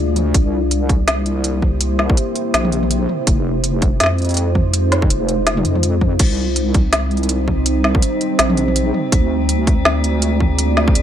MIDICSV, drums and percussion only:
0, 0, Header, 1, 2, 480
1, 0, Start_track
1, 0, Key_signature, -3, "minor"
1, 0, Tempo, 365854
1, 450, Time_signature, 4, 2, 24, 8
1, 14462, End_track
2, 0, Start_track
2, 0, Title_t, "Drums"
2, 211, Note_on_c, 9, 42, 35
2, 211, Note_on_c, 9, 45, 51
2, 343, Note_off_c, 9, 42, 0
2, 343, Note_off_c, 9, 45, 0
2, 451, Note_on_c, 9, 36, 125
2, 453, Note_on_c, 9, 42, 78
2, 582, Note_off_c, 9, 36, 0
2, 584, Note_off_c, 9, 42, 0
2, 933, Note_on_c, 9, 42, 62
2, 1064, Note_off_c, 9, 42, 0
2, 1172, Note_on_c, 9, 36, 100
2, 1174, Note_on_c, 9, 42, 33
2, 1303, Note_off_c, 9, 36, 0
2, 1305, Note_off_c, 9, 42, 0
2, 1411, Note_on_c, 9, 38, 124
2, 1411, Note_on_c, 9, 42, 81
2, 1543, Note_off_c, 9, 38, 0
2, 1543, Note_off_c, 9, 42, 0
2, 1651, Note_on_c, 9, 42, 35
2, 1782, Note_off_c, 9, 42, 0
2, 1890, Note_on_c, 9, 42, 67
2, 2022, Note_off_c, 9, 42, 0
2, 2130, Note_on_c, 9, 45, 49
2, 2131, Note_on_c, 9, 36, 62
2, 2261, Note_off_c, 9, 45, 0
2, 2262, Note_off_c, 9, 36, 0
2, 2369, Note_on_c, 9, 42, 82
2, 2501, Note_off_c, 9, 42, 0
2, 2611, Note_on_c, 9, 38, 62
2, 2742, Note_off_c, 9, 38, 0
2, 2750, Note_on_c, 9, 36, 108
2, 2851, Note_on_c, 9, 42, 61
2, 2881, Note_off_c, 9, 36, 0
2, 2982, Note_off_c, 9, 42, 0
2, 3090, Note_on_c, 9, 42, 37
2, 3221, Note_off_c, 9, 42, 0
2, 3333, Note_on_c, 9, 38, 118
2, 3333, Note_on_c, 9, 42, 77
2, 3464, Note_off_c, 9, 38, 0
2, 3464, Note_off_c, 9, 42, 0
2, 3470, Note_on_c, 9, 45, 76
2, 3573, Note_on_c, 9, 42, 37
2, 3602, Note_off_c, 9, 45, 0
2, 3704, Note_off_c, 9, 42, 0
2, 3711, Note_on_c, 9, 45, 53
2, 3813, Note_on_c, 9, 42, 64
2, 3842, Note_off_c, 9, 45, 0
2, 3944, Note_off_c, 9, 42, 0
2, 4053, Note_on_c, 9, 45, 49
2, 4184, Note_off_c, 9, 45, 0
2, 4291, Note_on_c, 9, 36, 122
2, 4291, Note_on_c, 9, 42, 82
2, 4422, Note_off_c, 9, 36, 0
2, 4422, Note_off_c, 9, 42, 0
2, 4772, Note_on_c, 9, 42, 65
2, 4903, Note_off_c, 9, 42, 0
2, 5010, Note_on_c, 9, 42, 37
2, 5012, Note_on_c, 9, 36, 101
2, 5141, Note_off_c, 9, 42, 0
2, 5143, Note_off_c, 9, 36, 0
2, 5250, Note_on_c, 9, 38, 106
2, 5250, Note_on_c, 9, 42, 78
2, 5294, Note_off_c, 9, 38, 0
2, 5294, Note_on_c, 9, 38, 90
2, 5328, Note_off_c, 9, 38, 0
2, 5328, Note_on_c, 9, 38, 76
2, 5381, Note_off_c, 9, 42, 0
2, 5459, Note_off_c, 9, 38, 0
2, 5489, Note_on_c, 9, 42, 17
2, 5534, Note_off_c, 9, 42, 0
2, 5534, Note_on_c, 9, 42, 19
2, 5570, Note_off_c, 9, 42, 0
2, 5570, Note_on_c, 9, 42, 21
2, 5628, Note_off_c, 9, 42, 0
2, 5628, Note_on_c, 9, 42, 24
2, 5650, Note_off_c, 9, 42, 0
2, 5650, Note_on_c, 9, 42, 27
2, 5696, Note_off_c, 9, 42, 0
2, 5696, Note_on_c, 9, 42, 33
2, 5731, Note_off_c, 9, 42, 0
2, 5731, Note_on_c, 9, 42, 68
2, 5862, Note_off_c, 9, 42, 0
2, 5970, Note_on_c, 9, 45, 54
2, 5973, Note_on_c, 9, 36, 60
2, 6101, Note_off_c, 9, 45, 0
2, 6104, Note_off_c, 9, 36, 0
2, 6212, Note_on_c, 9, 42, 83
2, 6344, Note_off_c, 9, 42, 0
2, 6454, Note_on_c, 9, 38, 61
2, 6454, Note_on_c, 9, 42, 39
2, 6585, Note_off_c, 9, 38, 0
2, 6585, Note_off_c, 9, 42, 0
2, 6590, Note_on_c, 9, 36, 103
2, 6594, Note_on_c, 9, 45, 38
2, 6696, Note_on_c, 9, 42, 70
2, 6721, Note_off_c, 9, 36, 0
2, 6726, Note_off_c, 9, 45, 0
2, 6827, Note_off_c, 9, 42, 0
2, 6934, Note_on_c, 9, 42, 38
2, 7065, Note_off_c, 9, 42, 0
2, 7172, Note_on_c, 9, 38, 119
2, 7172, Note_on_c, 9, 42, 79
2, 7303, Note_off_c, 9, 38, 0
2, 7303, Note_off_c, 9, 42, 0
2, 7310, Note_on_c, 9, 45, 85
2, 7410, Note_on_c, 9, 42, 39
2, 7441, Note_off_c, 9, 45, 0
2, 7541, Note_off_c, 9, 42, 0
2, 7549, Note_on_c, 9, 45, 53
2, 7650, Note_on_c, 9, 42, 70
2, 7680, Note_off_c, 9, 45, 0
2, 7781, Note_off_c, 9, 42, 0
2, 7888, Note_on_c, 9, 45, 54
2, 7890, Note_on_c, 9, 36, 61
2, 8019, Note_off_c, 9, 45, 0
2, 8021, Note_off_c, 9, 36, 0
2, 8126, Note_on_c, 9, 42, 87
2, 8126, Note_on_c, 9, 49, 77
2, 8129, Note_on_c, 9, 36, 122
2, 8257, Note_off_c, 9, 42, 0
2, 8257, Note_off_c, 9, 49, 0
2, 8260, Note_off_c, 9, 36, 0
2, 8607, Note_on_c, 9, 42, 66
2, 8738, Note_off_c, 9, 42, 0
2, 8848, Note_on_c, 9, 42, 38
2, 8849, Note_on_c, 9, 36, 105
2, 8979, Note_off_c, 9, 42, 0
2, 8981, Note_off_c, 9, 36, 0
2, 9087, Note_on_c, 9, 38, 123
2, 9087, Note_on_c, 9, 42, 84
2, 9218, Note_off_c, 9, 38, 0
2, 9218, Note_off_c, 9, 42, 0
2, 9329, Note_on_c, 9, 42, 17
2, 9408, Note_off_c, 9, 42, 0
2, 9408, Note_on_c, 9, 42, 24
2, 9488, Note_off_c, 9, 42, 0
2, 9488, Note_on_c, 9, 42, 29
2, 9565, Note_off_c, 9, 42, 0
2, 9565, Note_on_c, 9, 42, 73
2, 9696, Note_off_c, 9, 42, 0
2, 9809, Note_on_c, 9, 36, 67
2, 9809, Note_on_c, 9, 45, 52
2, 9940, Note_off_c, 9, 36, 0
2, 9940, Note_off_c, 9, 45, 0
2, 10048, Note_on_c, 9, 42, 84
2, 10179, Note_off_c, 9, 42, 0
2, 10289, Note_on_c, 9, 38, 65
2, 10420, Note_off_c, 9, 38, 0
2, 10427, Note_on_c, 9, 36, 108
2, 10528, Note_on_c, 9, 42, 67
2, 10558, Note_off_c, 9, 36, 0
2, 10659, Note_off_c, 9, 42, 0
2, 10770, Note_on_c, 9, 42, 39
2, 10901, Note_off_c, 9, 42, 0
2, 11006, Note_on_c, 9, 38, 123
2, 11006, Note_on_c, 9, 42, 82
2, 11137, Note_off_c, 9, 38, 0
2, 11137, Note_off_c, 9, 42, 0
2, 11145, Note_on_c, 9, 45, 78
2, 11248, Note_on_c, 9, 42, 40
2, 11276, Note_off_c, 9, 45, 0
2, 11379, Note_off_c, 9, 42, 0
2, 11389, Note_on_c, 9, 45, 55
2, 11490, Note_on_c, 9, 42, 71
2, 11520, Note_off_c, 9, 45, 0
2, 11622, Note_off_c, 9, 42, 0
2, 11730, Note_on_c, 9, 45, 51
2, 11861, Note_off_c, 9, 45, 0
2, 11969, Note_on_c, 9, 36, 127
2, 11970, Note_on_c, 9, 42, 85
2, 12100, Note_off_c, 9, 36, 0
2, 12101, Note_off_c, 9, 42, 0
2, 12450, Note_on_c, 9, 42, 67
2, 12581, Note_off_c, 9, 42, 0
2, 12689, Note_on_c, 9, 36, 108
2, 12690, Note_on_c, 9, 42, 38
2, 12820, Note_off_c, 9, 36, 0
2, 12821, Note_off_c, 9, 42, 0
2, 12927, Note_on_c, 9, 38, 127
2, 13058, Note_off_c, 9, 38, 0
2, 13172, Note_on_c, 9, 42, 39
2, 13303, Note_off_c, 9, 42, 0
2, 13409, Note_on_c, 9, 42, 68
2, 13540, Note_off_c, 9, 42, 0
2, 13648, Note_on_c, 9, 45, 48
2, 13650, Note_on_c, 9, 36, 67
2, 13780, Note_off_c, 9, 45, 0
2, 13781, Note_off_c, 9, 36, 0
2, 13888, Note_on_c, 9, 42, 80
2, 14019, Note_off_c, 9, 42, 0
2, 14130, Note_on_c, 9, 38, 66
2, 14261, Note_off_c, 9, 38, 0
2, 14269, Note_on_c, 9, 36, 111
2, 14370, Note_on_c, 9, 42, 65
2, 14400, Note_off_c, 9, 36, 0
2, 14462, Note_off_c, 9, 42, 0
2, 14462, End_track
0, 0, End_of_file